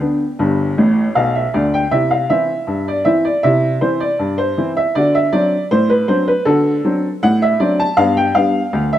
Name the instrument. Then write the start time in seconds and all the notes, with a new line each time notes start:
upright piano
Already playing: G4 D5 G5
0.00 D3 B3 D4
0.39 G1 G2
0.78 A1 A2
1.15 B1 B2 F5
1.35 E5
1.54 D2 D3 D5
1.74 G5
1.91 C3 E4 E5
2.11 F5
2.30 E3 C4 E4 E5
2.67 G2
2.88 D5
3.05 E3 C4 E4 E5
3.25 D5
3.43 C3 E4 E5
3.81 E3 C4 E4 C5
4.00 D5
4.19 G2
4.38 C5
4.58 E3 C4 E4
4.77 E5
4.95 D3 F#4 D5
5.15 E5
5.33 F#3 C4 D4 D5
5.71 A2 C5
5.90 B4
6.08 F#3 C4 D4 C5
6.28 B4
6.45 D3 F#4 A4
6.85 F#3 C4 D4
7.23 A2 F#5
7.42 E5
7.60 F#3 C4 D4 D5
7.80 A5
7.97 G2 B3 F5
8.17 G5
8.35 G3 B3 D4 F5
8.73 D2
8.93 E5